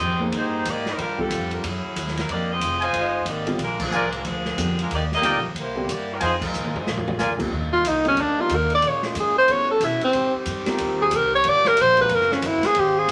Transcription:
Already playing: saxophone section C4 G4 G#4 D#5
0.00 upright bass F2
0.19 grand piano A#3 D#4 G#4 C5
0.32 upright bass G2, saxophone section D#4 G4 G#4 C5, ride
0.65 upright bass G#2, saxophone section A#3 D#4 G4 D5, hi-hat pedal, ride
0.86 saxophone section G3 C4 D#4 A#4, snare
0.98 upright bass G2, saxophone section G3 D4 F4 A#4, ride
1.17 grand piano G3 C4 F4 A4, saxophone section G3 D4 F4 A4, kick
1.30 upright bass F2, hi-hat pedal, ride
1.51 saxophone section G3 D4 F4 A#4, ride
1.63 upright bass F#2, saxophone section F#3 C#4 E4 G#4, ride
1.84 muted upright bass stroke
1.96 upright bass D#2, hi-hat pedal, ride
2.08 snare
2.17 saxophone section F#3 C#4 E4 A#4, snare, ride
2.28 upright bass F2, saxophone section A#3 D#4 G4 D5, ride
2.51 saxophone section C4 F4 G#4 D#5
2.60 upright bass F1, hi-hat pedal, ride
2.81 trumpet section F4 C5 D#5 G#5, ride
2.93 upright bass G1, saxophone section D#4, ride
2.97 saxophone section G#3 F4 C5
3.25 upright bass G#1, saxophone section A#3 D#4 G4 D5, hi-hat pedal, ride
3.46 grand piano D3 G3 C4 F4, ride
3.58 upright bass A#1, saxophone section G#3 D4 F4 A#4, ride
3.80 saxophone section F3 A#3 D4 G#4, kick, crash
3.91 upright bass C2, trumpet section F4 A#4 D5 G#5, hi-hat pedal
4.12 saxophone section G#3 D4 F4 A#4, ride
4.25 upright bass D2, saxophone section F3 A#3 D4 G#4, ride
4.45 snare
4.56 upright bass F2, grand piano D3 G3 C4 F4, hi-hat pedal, ride
4.79 saxophone section G#3 D4 F4 A#4, ride
4.91 upright bass D#2, saxophone section A#3 D#4 G4 D5, ride
5.12 saxophone section A#3 G4 D5 D#5, snare
5.21 upright bass D2, grand piano D3 G3 C4 F4, trumpet section D#4 A#4 D5 G5, hi-hat pedal, ride
5.33 upright bass A#1
5.44 upright bass G1
5.55 upright bass C2, ride
5.59 saxophone section A#3 E4 G4 C5
5.75 grand piano D3 G3 C4 G4
5.88 upright bass G2, saxophone section A#3 E4, hi-hat pedal, ride
5.92 saxophone section G4 D5
6.13 saxophone section G3 C4 E4 A#4
6.20 upright bass F2, trumpet section F4 C5 D#5 G#5, ride
6.25 saxophone section F3 C4 D#4 G#4
6.41 saxophone section D#4 A#4, kick, crash
6.45 saxophone section G#3 F4
6.54 upright bass D#2, hi-hat pedal
6.64 high tom
6.74 muted upright bass stroke, floor tom
6.78 saxophone section G#3 D#4 F4 C5
6.87 upright bass A#1, saxophone section A#3 F4 G#4 D5, snare
6.97 floor tom
7.08 floor tom
7.18 upright bass D2, trumpet section F4 A#4 D5 G#5, snare, hi-hat pedal
7.30 upright bass A#1
7.38 upright bass G#1, grand piano D#2 D3 G3 C4 F4, kick, crash
7.51 upright bass D#2, saxophone section G3 A#3 D4 D#4
7.73 alto saxophone F4
7.84 upright bass C2, hi-hat pedal, ride
7.88 alto saxophone D#4
8.04 grand piano D3 G3 C4 F4, ride
8.08 alto saxophone C#4
8.17 upright bass D2, alto saxophone D4, ride
8.38 grand piano D3 G3 C4 D#4, alto saxophone F4
8.49 upright bass D#2, hi-hat pedal, ride
8.55 alto saxophone A#4
8.70 ride
8.75 alto saxophone D5
8.82 upright bass A#2, saxophone section C#3 G#3 F4, ride
8.88 alto saxophone C#5
9.03 alto saxophone F4, snare
9.15 upright bass G#2, hi-hat pedal, ride
9.20 alto saxophone G#4
9.38 alto saxophone C5
9.47 upright bass A2, saxophone section G3 B3 F#4, grand piano B3 E4 A4 C#5, ride
9.52 alto saxophone C#5
9.71 alto saxophone A4
9.80 upright bass B2, hi-hat pedal, ride
9.85 alto saxophone E4
10.01 alto saxophone C4, muted upright bass stroke, ride
10.13 upright bass G#2, saxophone section D#3 G3 C4 G4, ride
10.34 muted upright bass stroke
10.46 upright bass G2, hi-hat pedal, ride
10.66 grand piano G3 C4 F4 A#4, muted upright bass stroke, snare, ride
10.78 upright bass D#2, ride
11.02 alto saxophone G#4
11.11 upright bass C2, hi-hat pedal, ride
11.16 alto saxophone A#4
11.35 alto saxophone C#5
11.44 upright bass G1, saxophone section F3 A#3 D4, ride
11.48 alto saxophone D5
11.65 alto saxophone A#4, snare
11.77 upright bass A#1, hi-hat pedal, ride
11.82 alto saxophone C5
11.97 grand piano G#3 C#4 F#4 A#4, kick, ride
12.01 alto saxophone B4
12.09 upright bass F#1, saxophone section E3 C4 F#4, ride
12.15 alto saxophone A#4
12.21 snare
12.31 alto saxophone C#4, snare
12.42 upright bass G1, hi-hat pedal, ride
12.47 alto saxophone E4
12.63 alto saxophone G#4, muted upright bass stroke, snare, ride
12.73 upright bass G#1, saxophone section D#3 F4 G#4, ride
12.79 alto saxophone G4
12.98 alto saxophone G#4
13.08 upright bass C2, hi-hat pedal, ride

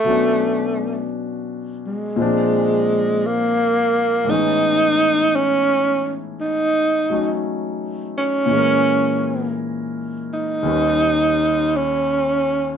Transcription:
Already playing: tenor saxophone A3
0.04 grand piano B2 F#3 B3
0.09 grand piano C#4 D4
1.87 tenor saxophone G#3
2.16 grand piano A#2 F3 G#3 C4
2.22 grand piano D4
3.26 tenor saxophone A#3
4.24 grand piano A2 E3 G#3
4.30 grand piano B3 C#4, tenor saxophone D#4
4.35 grand piano D#4
5.36 tenor saxophone C#4
6.41 tenor saxophone D#4
7.10 grand piano F#3 A3 C#4 D#4
8.18 tenor saxophone C#4
8.46 grand piano A#2 E3
8.51 grand piano G#3 C#4
8.57 grand piano A#4
10.34 tenor saxophone D#4
10.62 grand piano D#2 D#3 G3 C#4
10.67 grand piano B4
11.77 tenor saxophone C#4

